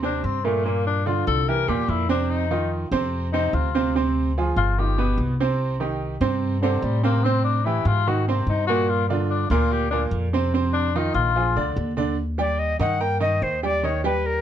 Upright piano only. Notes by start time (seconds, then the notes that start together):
0.03 C3 C4 C5
0.45 A#2 A#3 A#4
0.65 A#2 A#3 A#4
1.06 D3 D4 F4
1.48 E3 E4 G4
1.68 A#2 A#3 A#4
2.09 C3 C4 C5
2.51 D#3 D#4 F4
2.92 C3 C4 C5
3.33 C3 C4 C5
3.75 C3 C4 C5
3.95 C3 C4 C5
4.38 F3 F4 G#4
4.78 D#3 D#4 F4
4.98 B2 B3 B4
5.40 C3 C4 C5
5.80 D#3 D#4 G4
6.21 C3 C4 C5
6.63 C3 C4 C5
7.03 C3 C4 C5
7.25 C3 C4 C5
7.66 E3 E4 G4
8.07 D#3 D#4 F#4
8.28 C3 C4 C5
8.69 A#2 A#3 A#4
9.10 D3 D4 F4
9.51 A#2 A#3 A#4
9.92 A#2 A#3 A#4
10.33 C3 C4 C5
10.54 C3 C4 C5
10.96 D#3 D#4 F4
11.36 F3 F4 G#4
11.56 D3 D4 D5
11.97 D3 D4 D5
12.38 G3 G4 G5
12.80 D#3 D#4 D#5
13.00 A#3 A#4 A#5
13.20 D#3 D#4 D#5
13.63 G3 G4 G5
13.83 D#3 D#4 D#5
14.04 G3 G4 G5